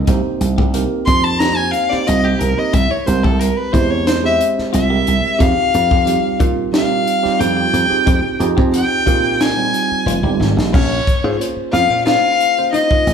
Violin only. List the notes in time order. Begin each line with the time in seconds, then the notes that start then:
1.06 C6
1.24 A5
1.39 A#5
1.56 G#5
1.71 F5
1.90 D5
2.08 D#5
2.25 G4
2.40 A#4
2.58 D#5
2.74 E5
2.91 C#5
3.06 C5
3.24 A4
3.40 A#4
3.57 B4
3.72 C5
3.90 C#5
4.07 C5
4.25 E5
4.75 E5
5.41 F5
6.74 F5
7.40 G5
8.74 G5
9.40 G#5
10.73 C#5
11.73 F5
12.06 F5
12.73 D#5